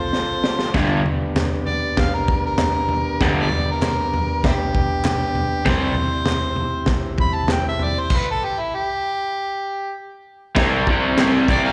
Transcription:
Already playing: C4 F4 A4 C5
0.13 snare
0.44 snare
0.59 snare
0.74 G2 D3 G3 B3, kick, snare, floor tom
0.79 D4 G4
1.06 floor tom
1.36 snare, clap, floor tom
1.67 D5, floor tom
1.97 F5, kick, snare, floor tom
2.14 A#4
2.28 kick, floor tom
2.46 A#4
2.58 snare, clap, floor tom
2.89 floor tom
3.21 G2 D3 G3, kick, snare, floor tom
3.40 D5
3.52 floor tom
3.71 A#4
3.82 snare, clap, floor tom
4.14 floor tom
4.44 C4 E4 G4, kick, snare, floor tom
4.75 kick, floor tom
5.05 snare, clap, floor tom
5.35 floor tom
5.65 C3 G3 C4 E4 G4, kick, snare, floor tom
5.70 C5
5.95 floor tom
6.25 snare, clap, floor tom
6.56 floor tom
6.86 kick, snare, floor tom
7.18 B5, kick, floor tom
7.35 A5
7.48 snare, clap, floor tom
7.53 G5
7.69 E5
7.79 floor tom
7.83 D5
8.00 C5
8.10 kick, crash
8.16 B4
8.31 A4
8.45 G4
8.60 E4
8.75 G4
10.56 C3 G3 C4 E4, kick, snare, crash
10.60 G4
10.87 C3 G3 C4, kick
11.17 C3 G3 C4, snare, clap, crash
11.48 C3 G3 C4 D5, kick, clap
11.64 A#4 D5 F5

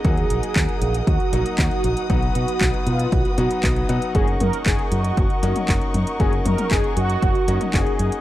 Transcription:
Already playing: A#4 D#5 F#5
0.04 D#2 F#3 A#3 D#4 F#4 G#4 D#6, kick, closed hi-hat
0.17 closed hi-hat
0.30 A#1, closed hi-hat
0.43 closed hi-hat
0.56 D#2, kick, clap, closed hi-hat
0.69 closed hi-hat
0.81 A#1, closed hi-hat
0.94 closed hi-hat
1.07 D#2 F#4, kick, closed hi-hat
1.20 closed hi-hat
1.33 A#1 F#3 A#3 D#4 F#4, closed hi-hat
1.46 closed hi-hat
1.58 D#2 F#4, kick, clap, closed hi-hat
1.71 closed hi-hat
1.84 A#1, closed hi-hat
1.97 closed hi-hat
2.10 B1 F#3 B3 D#4 F#4 B4 D#5, kick, closed hi-hat
2.22 closed hi-hat
2.35 B2, closed hi-hat
2.48 closed hi-hat
2.61 B1, kick, clap, closed hi-hat
2.74 closed hi-hat
2.87 B2 F4, closed hi-hat
2.99 closed hi-hat
3.12 B1 F#4, kick, closed hi-hat
3.25 closed hi-hat
3.38 B2 F#3 B3 D#4 F#4, closed hi-hat
3.51 closed hi-hat
3.63 B1, kick, clap, closed hi-hat
3.76 closed hi-hat
3.89 B2 F#3 B3 D#4 F#4, closed hi-hat
4.02 closed hi-hat
4.15 F#1 A#3 C#4 D#4 F#4 G#4 A#4 C#6, kick, closed hi-hat
4.28 closed hi-hat
4.40 F#2 A#4, closed hi-hat, high tom
4.53 closed hi-hat
4.66 F#1 G#4, kick, clap, closed hi-hat
4.79 closed hi-hat
4.92 F#2 F#4, closed hi-hat
5.04 closed hi-hat
5.17 F#1, kick, closed hi-hat
5.30 closed hi-hat
5.43 F#2 A#3 C#4 D#4 F#4, closed hi-hat
5.56 closed hi-hat, high tom
5.69 F#1, kick, clap, closed hi-hat
5.81 closed hi-hat
5.94 F#2, closed hi-hat, high tom
6.07 closed hi-hat
6.20 F#1 A#3 C#4 D#4 F#4 G#4, kick, closed hi-hat
6.33 closed hi-hat
6.46 F#2 A#4, closed hi-hat, high tom
6.58 closed hi-hat, high tom
6.71 F#1 G#4, kick, clap, closed hi-hat
6.84 closed hi-hat
6.97 F#2 F#4, closed hi-hat
7.10 closed hi-hat
7.22 F#1, kick, closed hi-hat
7.35 closed hi-hat
7.48 F#2 A#3 C#4 D#4 F#4, closed hi-hat
7.61 closed hi-hat, high tom
7.74 F#1 G#4, kick, clap, closed hi-hat
7.87 closed hi-hat
7.99 F#2, closed hi-hat
8.12 closed hi-hat

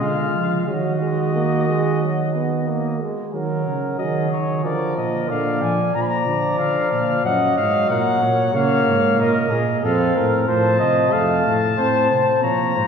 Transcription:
Already playing: G#3
0.02 D3 F4 F5
0.35 F3
0.68 D#3 F#3 F#4 D#5
1.02 G#3
1.36 A#3
1.69 G#3
2.02 F#3
2.35 B3
2.68 A#3
3.01 G#3
3.34 D#3 F#3 A#4
3.67 C#3
3.99 D#3 F#3 G#4 D#5
4.32 D#3 C#5
4.64 D3 F3 A#4 D5
4.97 A#2 D#5
5.30 A#2 D3 D5 F5
5.62 F3 G#5
5.94 A#2 F3 D5 A#5
6.01 B5
6.07 A#5
6.27 D3
6.59 D3 F5
6.91 A#2 F5
7.25 F#2 F#3 D#5 F#5
7.57 G#2 F5
7.90 A#2 A#4 F#5
8.22 A#2 C#5
8.54 C#3 A#3 C#5 F5
8.87 G#2
9.19 A#2 A#4 D#5
9.51 A#2 G#4
9.84 F2 C4 A4 F5
10.16 A2 A#4
10.48 A2 F3 C5 A5
10.79 C3 D#5
11.13 F2 A3 F5 A5
11.46 A2
11.78 A2 C4 C5
12.10 C3 C5
12.43 A#2 F3 C#5 A#5
12.76 G#2 C5

